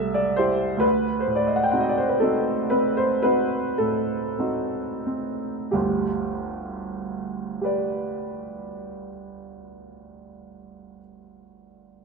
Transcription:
Already playing: C2 A3 E5
0.14 D5
0.36 E4 G4 C5
0.77 D2 B4
1.20 C5
1.27 A2
1.36 D5
1.47 D#5
1.56 F#5
1.63 G5
1.71 C4 D#4 F#4 F#5
1.80 D#5
1.89 D5
1.98 C5
2.09 B4
2.20 C4 D#4 F#4 A4
2.70 C4 B4
2.97 C5
3.22 C4 D#4 F#4 B4
3.78 A2 A4
4.38 C4 D#4 F#4
5.06 C4
5.71 G1 D2 G4
7.61 G4 B4
7.65 D5

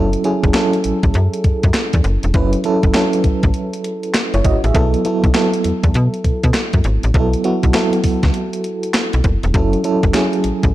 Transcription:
Already playing: F#1 F#3 C#4 E4 A4
0.13 closed hi-hat
0.24 F#3 C#4 E4 G#4, closed hi-hat
0.44 F#1, kick, closed hi-hat
0.54 F#3 C#4 E4 A4, snare, clap, closed hi-hat
0.73 closed hi-hat
0.84 A1, closed hi-hat
1.03 A1, kick, closed hi-hat
1.14 F#2, closed hi-hat
1.33 closed hi-hat
1.44 F#2, kick, closed hi-hat
1.63 F#2, kick, closed hi-hat
1.74 snare, clap, closed hi-hat
1.93 E2, kick, closed hi-hat
2.04 F#1, closed hi-hat
2.23 E1, closed hi-hat
2.34 F#1 F#3 C#4 E4 B4, kick, closed hi-hat
2.53 closed hi-hat
2.64 F#3 C#4 E4 A4, closed hi-hat
2.83 F#1, kick, closed hi-hat
2.94 F#3 C#4 E4 A4, snare, clap, closed hi-hat
3.13 closed hi-hat
3.24 A1, kick, closed hi-hat
3.43 A1, kick, closed hi-hat
3.54 closed hi-hat
3.73 closed hi-hat
3.84 closed hi-hat
4.03 closed hi-hat
4.14 snare, clap, closed hi-hat
4.34 F#1 E4 C#5, closed hi-hat
4.44 G#1 F#4 D#5, kick, closed hi-hat
4.64 A1 G#4 E5, closed hi-hat
4.75 B1 F#3 B3 E4 A4, kick, closed hi-hat
4.94 closed hi-hat
5.05 F#3 B3 E4 A4, closed hi-hat
5.24 B1, kick, closed hi-hat
5.34 F#3 B3 E4 A4, snare, clap, closed hi-hat
5.54 closed hi-hat
5.64 E2, closed hi-hat
5.83 E2, kick, closed hi-hat
5.94 B2, closed hi-hat
6.14 closed hi-hat
6.24 B2, kick, closed hi-hat
6.43 B2, kick, closed hi-hat
6.54 snare, clap, closed hi-hat
6.73 F#2, kick, closed hi-hat
6.84 G#1, closed hi-hat
7.03 A1, closed hi-hat
7.14 B1 F#3 B3 E4 A4, kick, closed hi-hat
7.33 closed hi-hat
7.44 F#3 B3 E4 F#4, closed hi-hat
7.63 B1, kick, closed hi-hat
7.74 F#3 B3 E4 A4, snare, clap, closed hi-hat
7.93 closed hi-hat
8.04 C#2, kick, open hi-hat
8.23 C#2, kick, snare, closed hi-hat
8.34 closed hi-hat
8.53 closed hi-hat
8.64 closed hi-hat
8.83 closed hi-hat
8.94 snare, clap, closed hi-hat
9.13 B1, closed hi-hat
9.24 F#1, kick, closed hi-hat
9.43 E1, closed hi-hat
9.54 F#1 F#3 C#4 E4 A4, kick, closed hi-hat
9.73 closed hi-hat
9.84 F#3 C#4 E4 A4, closed hi-hat
10.03 F#1, kick, closed hi-hat
10.14 F#3 C#4 E4 G#4, snare, clap, closed hi-hat
10.33 closed hi-hat
10.44 A1, closed hi-hat
10.63 A1, kick, closed hi-hat

